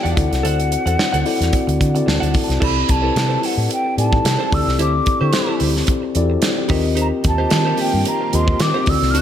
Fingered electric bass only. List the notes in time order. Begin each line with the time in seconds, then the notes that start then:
0.05 E2
0.17 D2
0.32 C2
0.44 D2
0.86 E2
1.13 D2
1.41 E2
1.68 D2
1.81 D3
2.07 D2
2.22 D2
2.49 C2
2.62 C2
2.89 C2
3.16 C3
3.57 A2
3.98 A2
4.25 C3
4.52 D2
4.67 C2
4.79 D2
5.21 D3
5.61 D2
6.15 E2
6.70 D#2
7.25 D#2
7.52 D#3
7.94 G2
8.34 D#2
8.60 D#3
8.87 D2
9.02 C2
9.15 D2